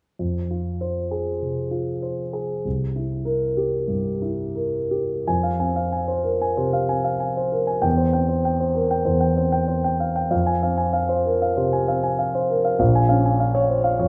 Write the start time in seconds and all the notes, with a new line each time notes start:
0.19 F2
0.51 F4
0.81 C5
1.11 G#4
1.42 C3
1.71 F4
2.02 C5
2.33 G#4
2.65 C2
2.96 E4
3.25 A#4
3.57 G4
3.88 G2
4.22 E4
4.55 A#4
4.91 G4
5.27 F2 G#5
5.43 F5
5.59 C4 G#5
5.76 F5
5.92 G#5
6.08 C5
6.24 A#4
6.41 G#5
6.57 C3 C5
6.73 F5
6.89 C4 G#5
7.04 F5
7.20 G#5
7.37 C5
7.52 A#4
7.67 G#5
7.82 E2 G5
7.97 C5
8.13 C4 G5
8.29 C5
8.45 G5
8.60 C5
8.75 A#4
8.91 G5
9.05 E2 C5
9.21 G5
9.36 C4 C5
9.52 G5
9.68 C5
9.84 G5
10.00 F5
10.16 G5
10.31 F2 F5
10.46 G#5
10.63 C4 F5
10.77 G#5
10.93 F5
11.09 C5
11.26 A#4
11.42 F5
11.57 C3 C5
11.73 G#5
11.88 C4 F5
12.03 G#5
12.19 F5
12.35 C5
12.50 A#4
12.65 F5
12.79 A#1 F5
12.95 G#5
13.09 C#4 F5
13.25 G#5
13.40 F5
13.55 C#5
13.70 C5
13.84 F5
13.99 F2 C#5